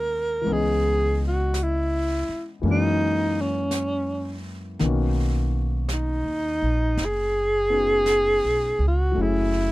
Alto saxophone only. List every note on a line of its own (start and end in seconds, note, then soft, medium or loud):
0.00 0.54 A#4 medium
0.53 1.22 G#4 medium
1.27 1.64 F#4 medium
1.63 2.50 E4 medium
2.71 3.43 D#4 medium
3.41 4.47 C#4 medium
5.93 7.07 D#4 medium
7.05 8.83 G#4 medium
8.88 9.23 F#4 medium
9.21 9.72 E4 medium